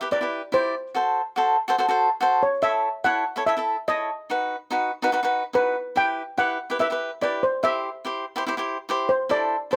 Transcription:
0.01 E4 G4 B4
0.11 E4 G4 B4 D5
0.21 E4 G4 B4
0.52 E4 G4 C5 D5
0.95 F#4 A4 C5
1.36 F#4 A4 C5
1.68 F#4 A4 C5
1.78 F#4 A4 C5
1.88 F#4 A4 C5
2.21 F#4 A4 C5
2.43 C#5
2.62 E4 A4 C#5 E5
3.04 E4 A4 C#5 F#5
3.36 E4 A4 C#5
3.46 E4 A4 C#5 E5
3.57 E4 A4 E5
3.88 E4 A4 C#5 D#5
4.30 D#4 F#4 B4
4.71 D#4 F#4 B4
5.02 D#4 F#4 B4
5.13 F#4 B4
5.23 D#4 F#4 B4
5.53 D#4 F#4 B4
5.96 E4 G4 B4 G5
6.38 E4 G4 B4 F#5
6.70 E4 G4 B4
6.79 E4 G4 B4 E5
6.90 E4 G4 B4
7.21 E4 G4 B4 D5
7.43 C5
7.63 E4 G4 C5 E5
8.05 E4 G4 C5
8.36 E4 G4 C5
8.47 E4 G4 C5
8.57 E4 G4 C5
8.89 E4 G4 C5
9.09 C5
9.29 E4 A4 C5 D5
9.71 E4 A4 C5

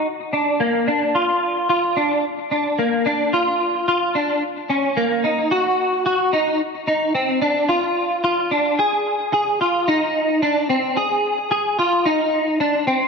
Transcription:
0.33 D4
0.60 A#3
0.87 D4
1.15 F4
1.69 F4
1.97 D4
2.51 D4
2.79 A#3
3.06 D4
3.33 F4
3.88 F4
4.15 D4
4.70 C#4
4.97 A#3
5.24 D#4
5.51 F#4
6.06 F#4
6.33 D#4
6.87 D#4
7.15 C4
7.42 D4
7.69 F4
8.24 F4
8.51 D4
8.79 G#4
9.33 G#4
9.61 F4
9.88 D#4
10.42 D4
10.69 C4
10.97 G#4
11.51 G#4
11.79 F4
12.06 D#4
12.60 D4
12.87 C4

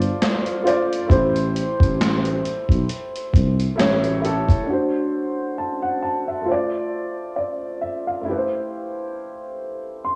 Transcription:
Already playing: G1 A3 F4 C5 D5
0.02 closed hi-hat
0.22 snare, clap, closed hi-hat
0.46 closed hi-hat
0.62 A3 F4 C5
0.67 D5, closed hi-hat
0.93 closed hi-hat
1.07 A1 A3 E4 G4, kick
1.11 C5, closed hi-hat
1.36 closed hi-hat
1.56 closed hi-hat
1.80 A1, kick, closed hi-hat
2.01 snare, clap, closed hi-hat
2.25 closed hi-hat
2.45 closed hi-hat
2.69 B1, kick, closed hi-hat
2.89 closed hi-hat
3.16 closed hi-hat
3.34 C2, kick, closed hi-hat
3.60 closed hi-hat
3.76 A1 A3 E4 G4, snare
3.80 C#5, clap, closed hi-hat
4.04 closed hi-hat
4.20 A3 E4 G4
4.25 A4, closed hi-hat
4.48 kick, closed hi-hat
4.63 A3 D4
4.69 F#4 C5
5.58 A5
5.82 F#5
6.02 A5
6.28 E5
6.42 A3 F4
6.48 C5 D5
7.36 D5
7.81 E5
8.07 F5
8.21 A3 E4
8.28 G4 B4
8.38 C5
10.04 C6

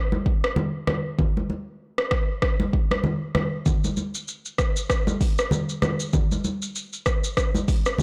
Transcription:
0.12 high conga
0.26 kick
0.44 cross-stick
0.56 high conga, low conga
0.87 cross-stick, high conga, low conga
1.19 kick, low conga
1.37 high conga
1.50 high conga
1.98 cross-stick
2.11 kick, cross-stick
2.42 kick, cross-stick
2.60 high conga
2.73 kick
2.91 cross-stick, high conga
3.04 high conga, low conga
3.35 cross-stick, high conga, low conga
3.66 kick, low conga, shaker
3.84 high conga, shaker
3.97 high conga, shaker
4.15 shaker
4.28 shaker
4.45 shaker
4.58 kick, cross-stick, shaker
4.76 shaker
4.90 kick, cross-stick, shaker
5.07 high conga, shaker
5.21 kick, open hi-hat, shaker
5.38 cross-stick, shaker
5.51 high conga, low conga, shaker
5.69 shaker
5.82 cross-stick, high conga, low conga, shaker
6.00 shaker
6.13 kick, low conga, shaker
6.32 high conga, shaker
6.44 high conga, shaker
6.62 shaker
6.76 shaker
6.93 shaker
7.06 kick, cross-stick, shaker
7.24 shaker
7.37 kick, cross-stick, shaker
7.55 high conga, shaker
7.68 kick, open hi-hat, shaker
7.86 cross-stick, shaker
7.98 high conga, low conga

